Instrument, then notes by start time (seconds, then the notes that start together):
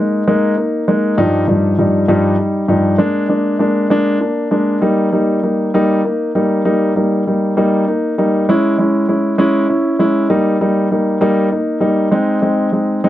grand piano
Already playing: G#3 A#3 D#4
0.28 G#3 A#3 D#4
0.57 A#3 D#4
0.88 G#3 A#3 D#4
1.18 G2 F3 G3 D#4
1.48 G2 F3 G3 D#4
1.78 G2 F3 G3 D#4
2.08 G2 F3 G3 D#4
2.38 G3 D#4
2.68 G2 F3 G3 D#4
2.98 G#3 A#3 D4
3.29 G#3 A#3 D4
3.59 G#3 A#3 D4
3.90 G#3 A#3 D4
4.21 A#3 D4
4.51 G#3 A#3 D4
4.81 G3 A#3 D#4
5.12 G3 A#3 D#4
5.43 G3 A#3 D#4
5.74 G3 A#3 D#4
6.04 A#3
6.35 G3 A#3 D#4
6.65 G3 A#3 D#4
6.96 G3 A#3 D#4
7.27 G3 A#3 D#4
7.57 G3 A#3 D#4
7.88 A#3 D#4
8.18 G3 A#3 D#4
8.49 G#3 C#4 E4
8.79 G#3 C#4 E4
9.09 G#3 C#4 E4
9.38 G#3 C#4 E4
9.69 C#4 E4
9.99 G#3 C#4 E4
10.30 G3 A#3 D#4
10.61 G3 A#3 D#4
10.91 G3 A#3 D#4
11.21 G3 A#3 D#4
11.51 A#3 D#4
11.80 G3 A#3 D#4
12.12 G#3 C4 D#4
12.42 G#3 C4 D#4
12.72 G#3 C4 D#4
13.04 G#3 C4 D#4